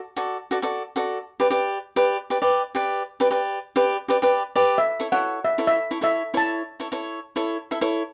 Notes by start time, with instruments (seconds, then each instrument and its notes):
0.17 cavaquinho F#4 A4 D5
0.51 cavaquinho F#4 A4 D5
0.62 cavaquinho F#4 A4 D5
0.96 cavaquinho F#4 A4 D5
1.40 cavaquinho G4 B4 D5
1.50 cavaquinho G4 B4 D5
1.96 cavaquinho G4 B4 D5
2.30 cavaquinho G4 B4 D5
2.42 cavaquinho G4 B4 D5
2.75 cavaquinho G4 B4 D5
3.20 cavaquinho G4 B4 D5
3.31 cavaquinho G4 B4 D5
3.76 cavaquinho G4 B4 D5
4.08 cavaquinho G4 B4 D5
4.22 cavaquinho G4 B4 D5
4.56 cavaquinho G4 B4 D5
4.78 steel pan E5
5.00 cavaquinho E4 A4 C#5
5.12 cavaquinho E4 A4 C#5, steel pan F#5
5.45 steel pan E5
5.58 cavaquinho E4 A4 C#5
5.67 steel pan E5
5.91 cavaquinho E4 A4 C#5
6.01 cavaquinho E4 A4 C#5, steel pan E5
6.34 cavaquinho E4 A4 C#5, steel pan A5
6.80 cavaquinho E4 A4 C#5
6.92 cavaquinho E4 A4 C#5
7.36 cavaquinho E4 A4 C#5
7.71 cavaquinho E4 A4 E5
7.81 cavaquinho E4 A4 C#5